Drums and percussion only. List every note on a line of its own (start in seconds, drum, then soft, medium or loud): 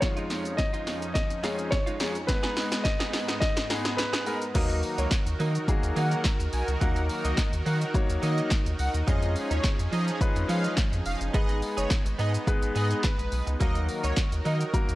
0.02 kick loud
0.02 snare medium
0.02 closed hi-hat medium
0.02 shaker medium
0.17 closed hi-hat soft
0.17 shaker soft
0.30 snare medium
0.30 open hi-hat medium
0.30 shaker soft
0.45 closed hi-hat medium
0.45 shaker medium
0.58 kick loud
0.58 snare medium
0.58 closed hi-hat medium
0.58 shaker medium
0.74 closed hi-hat medium
0.74 shaker medium
0.87 snare medium
0.87 open hi-hat medium
0.87 shaker soft
1.02 closed hi-hat medium
1.02 shaker medium
1.15 kick loud
1.15 snare medium
1.15 closed hi-hat medium
1.15 shaker medium
1.30 closed hi-hat medium
1.30 shaker medium
1.44 snare medium
1.44 open hi-hat medium
1.44 shaker medium
1.59 closed hi-hat soft
1.59 shaker medium
1.72 kick loud
1.72 snare loud
1.72 closed hi-hat medium
1.72 shaker medium
1.87 closed hi-hat medium
1.87 shaker medium
2.00 snare loud
2.00 open hi-hat medium
2.00 shaker medium
2.15 closed hi-hat medium
2.15 shaker medium
2.29 kick loud
2.29 snare loud
2.29 closed hi-hat medium
2.29 shaker medium
2.43 snare loud
2.43 closed hi-hat soft
2.43 shaker soft
2.57 snare loud
2.57 open hi-hat medium
2.57 shaker soft
2.72 snare loud
2.72 closed hi-hat medium
2.72 shaker medium
2.85 kick loud
2.85 snare loud
2.85 closed hi-hat medium
2.85 shaker medium
3.00 snare loud
3.00 closed hi-hat medium
3.00 shaker medium
3.13 snare loud
3.13 open hi-hat medium
3.13 shaker soft
3.28 snare loud
3.28 closed hi-hat medium
3.28 shaker medium
3.42 kick loud
3.42 snare loud
3.42 closed hi-hat medium
3.42 shaker medium
3.57 snare loud
3.57 closed hi-hat medium
3.57 shaker medium
3.70 snare loud
3.70 open hi-hat medium
3.70 shaker medium
3.85 snare loud
3.85 closed hi-hat medium
3.85 shaker medium
3.98 snare loud
3.98 closed hi-hat medium
3.98 shaker medium
4.13 snare loud
4.13 closed hi-hat medium
4.13 shaker medium
4.26 open hi-hat medium
4.26 shaker medium
4.42 closed hi-hat medium
4.42 shaker medium
4.55 kick loud
4.55 closed hi-hat medium
4.55 crash loud
4.55 shaker medium
4.70 closed hi-hat soft
4.70 shaker medium
4.83 open hi-hat medium
4.83 shaker soft
4.98 closed hi-hat medium
4.98 shaker medium
5.11 kick loud
5.11 snare loud
5.11 clap loud
5.11 closed hi-hat medium
5.11 shaker medium
5.27 closed hi-hat medium
5.27 shaker medium
5.40 open hi-hat medium
5.40 shaker soft
5.55 closed hi-hat medium
5.55 shaker medium
5.68 kick loud
5.68 closed hi-hat medium
5.68 shaker medium
5.83 closed hi-hat medium
5.83 shaker medium
5.96 open hi-hat medium
5.96 shaker medium
6.11 closed hi-hat medium
6.11 shaker medium
6.24 kick loud
6.24 snare medium
6.24 clap loud
6.24 closed hi-hat medium
6.24 shaker medium
6.40 closed hi-hat medium
6.40 shaker medium
6.53 open hi-hat medium
6.53 shaker medium
6.68 closed hi-hat soft
6.68 shaker medium
6.81 kick loud
6.81 closed hi-hat medium
6.81 shaker medium
6.96 closed hi-hat soft
6.96 shaker soft
7.09 open hi-hat medium
7.09 shaker soft
7.25 closed hi-hat medium
7.25 shaker medium
7.37 kick loud
7.37 snare medium
7.37 clap loud
7.37 closed hi-hat medium
7.37 shaker medium
7.53 closed hi-hat medium
7.53 shaker medium
7.66 open hi-hat medium
7.66 shaker soft
7.81 closed hi-hat medium
7.81 shaker medium
7.94 kick loud
7.94 closed hi-hat medium
7.94 shaker medium
8.10 closed hi-hat medium
8.10 shaker medium
8.23 open hi-hat medium
8.23 shaker medium
8.38 closed hi-hat soft
8.38 shaker medium
8.50 kick loud
8.50 snare medium
8.50 clap loud
8.50 closed hi-hat medium
8.50 shaker medium
8.67 closed hi-hat medium
8.67 shaker medium
8.79 open hi-hat medium
8.79 shaker medium
8.95 closed hi-hat medium
8.95 shaker medium
9.08 kick loud
9.08 closed hi-hat medium
9.08 shaker medium
9.23 closed hi-hat soft
9.23 shaker soft
9.36 open hi-hat medium
9.36 shaker soft
9.51 closed hi-hat medium
9.51 shaker medium
9.64 kick loud
9.64 snare loud
9.64 clap loud
9.64 closed hi-hat medium
9.64 shaker medium
9.80 closed hi-hat medium
9.80 shaker medium
9.93 open hi-hat medium
9.93 shaker soft
10.08 closed hi-hat medium
10.08 shaker medium
10.21 kick loud
10.21 closed hi-hat medium
10.21 shaker medium
10.36 closed hi-hat medium
10.36 shaker medium
10.49 open hi-hat medium
10.49 shaker medium
10.64 closed hi-hat medium
10.64 shaker medium
10.77 kick loud
10.77 snare medium
10.77 clap loud
10.77 closed hi-hat medium
10.77 shaker medium
10.93 closed hi-hat medium
10.93 shaker medium
11.06 open hi-hat medium
11.06 shaker medium
11.21 closed hi-hat soft
11.21 shaker medium
11.34 kick loud
11.34 closed hi-hat medium
11.34 shaker medium
11.49 closed hi-hat soft
11.49 shaker soft
11.62 open hi-hat medium
11.62 shaker soft
11.77 closed hi-hat medium
11.77 shaker medium
11.90 kick loud
11.90 snare loud
11.90 clap loud
11.90 closed hi-hat medium
11.90 shaker medium
12.06 closed hi-hat medium
12.06 shaker medium
12.19 open hi-hat medium
12.19 shaker soft
12.34 closed hi-hat medium
12.34 shaker medium
12.47 kick loud
12.47 closed hi-hat medium
12.47 shaker medium
12.62 closed hi-hat medium
12.62 shaker medium
12.76 open hi-hat medium
12.76 shaker medium
12.91 closed hi-hat medium
12.91 shaker medium
13.03 kick loud
13.03 snare medium
13.03 clap loud
13.03 closed hi-hat medium
13.03 shaker medium
13.19 closed hi-hat medium
13.19 shaker medium
13.32 open hi-hat medium
13.32 shaker medium
13.47 closed hi-hat medium
13.47 shaker medium
13.61 kick loud
13.61 closed hi-hat medium
13.61 shaker medium
13.75 closed hi-hat medium
13.75 shaker medium
13.89 open hi-hat medium
13.89 shaker soft
14.04 closed hi-hat medium
14.04 shaker medium
14.16 kick loud
14.16 snare loud
14.16 clap loud
14.16 closed hi-hat medium
14.16 shaker medium
14.32 closed hi-hat medium
14.32 shaker medium
14.45 open hi-hat medium
14.45 shaker soft
14.61 closed hi-hat medium
14.61 shaker medium
14.74 kick loud
14.74 closed hi-hat medium
14.74 shaker medium
14.89 closed hi-hat medium
14.89 shaker medium